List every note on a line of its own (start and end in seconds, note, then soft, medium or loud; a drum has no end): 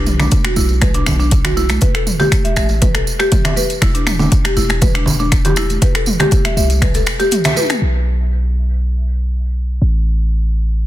0.00 0.28 B1 loud
0.06 mid tom medium
0.06 tambourine medium
0.06 muted conga soft
0.20 0.30 D4 medium
0.20 finger snap medium
0.20 tambourine soft
0.20 high conga medium
0.20 low conga loud
0.31 kick loud
0.31 closed hi-hat medium
0.31 tambourine soft
0.31 high conga medium
0.44 0.55 F#4 medium
0.44 finger snap medium
0.44 closed hi-hat soft
0.44 muted conga medium
0.56 1.03 B1 medium
0.56 0.69 E4 medium
0.56 tambourine loud
0.56 high conga medium
0.69 tambourine soft
0.69 muted conga soft
0.81 0.94 B4 medium
0.81 finger snap medium
0.81 kick loud
0.81 closed hi-hat medium
0.81 mid tom medium
0.81 tambourine medium
0.81 high conga medium
0.94 1.05 D4 medium
0.94 closed hi-hat soft
0.94 muted conga soft
1.06 1.78 B1 medium
1.06 finger snap medium
1.06 tambourine medium
1.06 low conga loud
1.19 1.30 D4 medium
1.19 tambourine soft
1.19 muted conga soft
1.31 kick loud
1.31 closed hi-hat medium
1.31 tambourine medium
1.45 1.55 F#4 medium
1.45 finger snap medium
1.45 closed hi-hat soft
1.45 tambourine soft
1.45 low conga medium
1.57 1.68 E4 medium
1.57 tambourine medium
1.57 muted conga medium
1.69 finger snap medium
1.69 closed hi-hat soft
1.69 tambourine soft
1.69 high conga medium
1.81 1.94 B4 medium
1.81 kick loud
1.81 closed hi-hat medium
1.81 tambourine soft
1.81 muted conga soft
1.81 high conga medium
1.95 2.01 A4 medium
1.95 finger snap medium
1.95 closed hi-hat soft
2.07 mid tom medium
2.07 tambourine loud
2.07 muted conga soft
2.19 2.31 G4 loud
2.19 tambourine soft
2.19 high conga medium
2.19 low conga loud
2.32 finger snap medium
2.32 kick loud
2.32 closed hi-hat medium
2.32 tambourine soft
2.32 high conga medium
2.44 2.55 E5 medium
2.44 closed hi-hat soft
2.44 muted conga soft
2.56 3.03 A1 medium
2.56 2.69 E5 medium
2.56 finger snap medium
2.56 tambourine medium
2.56 high conga medium
2.69 tambourine soft
2.69 muted conga soft
2.82 2.94 B4 medium
2.82 kick loud
2.82 closed hi-hat medium
2.82 mid tom medium
2.82 tambourine medium
2.94 3.01 A4 medium
2.94 finger snap medium
2.94 closed hi-hat soft
2.94 muted conga soft
3.07 tambourine medium
3.19 3.31 G4 loud
3.19 finger snap medium
3.19 tambourine soft
3.19 muted conga soft
3.32 kick loud
3.32 closed hi-hat medium
3.32 mid tom medium
3.32 tambourine soft
3.44 3.55 E5 medium
3.44 finger snap medium
3.44 closed hi-hat soft
3.44 tambourine soft
3.44 low conga loud
3.56 3.69 B4 medium
3.56 tambourine medium
3.56 muted conga soft
3.70 closed hi-hat soft
3.70 tambourine soft
3.82 4.28 E1 loud
3.82 3.94 E4 medium
3.82 finger snap medium
3.82 kick loud
3.82 closed hi-hat medium
3.82 tambourine soft
3.82 muted conga soft
3.82 high conga medium
3.95 4.05 D4 medium
3.95 closed hi-hat soft
4.07 finger snap medium
4.07 mid tom medium
4.07 tambourine medium
4.07 muted conga soft
4.19 4.30 D4 medium
4.19 tambourine soft
4.19 high conga medium
4.19 low conga loud
4.31 kick loud
4.31 closed hi-hat medium
4.31 tambourine medium
4.31 high conga medium
4.45 4.55 G4 medium
4.45 finger snap medium
4.45 closed hi-hat soft
4.45 muted conga medium
4.57 5.03 E1 medium
4.57 4.69 E4 medium
4.57 tambourine medium
4.57 high conga medium
4.69 finger snap medium
4.69 tambourine soft
4.69 muted conga soft
4.81 4.94 B4 medium
4.81 kick loud
4.81 closed hi-hat medium
4.81 mid tom medium
4.81 tambourine medium
4.81 high conga medium
4.95 5.05 D4 medium
4.95 finger snap medium
4.95 closed hi-hat soft
4.95 muted conga soft
5.06 5.78 E1 loud
5.06 tambourine medium
5.06 low conga loud
5.19 5.31 D4 medium
5.19 tambourine soft
5.19 muted conga soft
5.32 finger snap medium
5.32 kick loud
5.32 closed hi-hat medium
5.32 tambourine soft
5.45 5.56 G4 medium
5.45 closed hi-hat soft
5.45 tambourine soft
5.45 low conga loud
5.56 5.69 E4 medium
5.56 finger snap medium
5.56 tambourine medium
5.56 muted conga soft
5.70 closed hi-hat soft
5.70 tambourine soft
5.70 high conga medium
5.82 5.94 B4 medium
5.82 kick loud
5.82 closed hi-hat medium
5.82 tambourine soft
5.82 muted conga soft
5.82 high conga medium
5.95 6.01 A4 medium
5.95 finger snap medium
5.95 closed hi-hat soft
6.06 mid tom medium
6.06 tambourine medium
6.06 muted conga soft
6.19 6.31 G4 loud
6.19 finger snap medium
6.19 closed hi-hat soft
6.19 tambourine soft
6.19 high conga medium
6.19 low conga loud
6.31 kick loud
6.31 closed hi-hat medium
6.31 tambourine soft
6.31 high conga medium
6.45 6.56 E5 medium
6.45 finger snap medium
6.45 closed hi-hat soft
6.45 tambourine soft
6.45 muted conga medium
6.57 7.03 C2 medium
6.57 6.69 E5 medium
6.57 tambourine medium
6.57 high conga medium
6.70 closed hi-hat soft
6.70 tambourine soft
6.70 muted conga soft
6.82 6.94 B4 medium
6.82 finger snap medium
6.82 kick loud
6.82 closed hi-hat medium
6.82 mid tom loud
6.94 7.01 A4 medium
6.94 closed hi-hat soft
6.94 tambourine soft
6.94 muted conga medium
7.06 finger snap medium
7.06 tambourine medium
7.19 7.31 G4 loud
7.19 closed hi-hat soft
7.19 tambourine soft
7.19 muted conga soft
7.31 closed hi-hat medium
7.31 mid tom medium
7.31 tambourine soft
7.44 7.55 E5 medium
7.44 finger snap medium
7.44 closed hi-hat soft
7.44 tambourine soft
7.44 low conga loud
7.56 7.69 B4 medium
7.56 high tom medium
7.56 tambourine medium
7.56 muted conga medium
7.70 finger snap medium
7.70 closed hi-hat soft
7.70 mid tom medium
7.70 tambourine soft
7.82 9.79 B1 medium
9.82 10.87 A1 medium